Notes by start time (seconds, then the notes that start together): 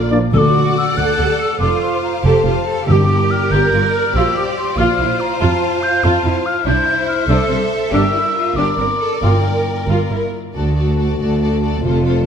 Already playing: A#1 A#2 D3 D4 F4 A#4
0.11 F3 A#3 D4 F4 D5
0.33 D2 D3 F#4 A4 D5 F#5 E6
0.38 D6
0.78 E6
0.97 D2 A4 F#6
1.19 D2 G4
1.41 E6
1.60 F1 F4 A4 C5 F5 D6
1.82 C6
2.04 A#5
2.24 F1 G4 A4 A5
2.45 F1 F4 G4
2.67 A4
2.87 G1 G2 G4 A#4 D5 E6
2.92 D6
3.31 F6
3.51 G1 G4 A#4 G6
3.72 G1 F4
3.95 F6
4.15 A#1 F4 G4 C5 E6
4.38 D6
4.58 C6
4.77 A#1 F4 F6
5.00 A#1 E4
5.20 A#5
5.40 F2 F4 F5 A5
5.83 G6
6.04 F2 F4 A5
6.25 F2 E4
6.46 F6
6.65 C2 D4 E4 C5 E5 G6
7.08 F6
7.28 C2 D4 A4 E6
7.49 C2 C4
7.92 G1 D4 G4 A#4 E6
8.15 E4
8.36 F4
8.56 G1 D4 G4 D5 D6
8.77 G1 C4 A#4
9.01 A4
9.22 G1 G2 F4 A#4 G5
9.88 G1 F4
10.11 G1 E4
10.53 D2 A3 F#4 A4 D5 A5
10.75 F#4 A4 D5
10.97 F#4 A4 D5
11.18 D2 F#4 A4 D5
11.41 F#4 A4 D5
11.61 F#4 A4 D5
11.82 F1 F2 F4 A4
11.86 C5
12.04 F4 A4 C5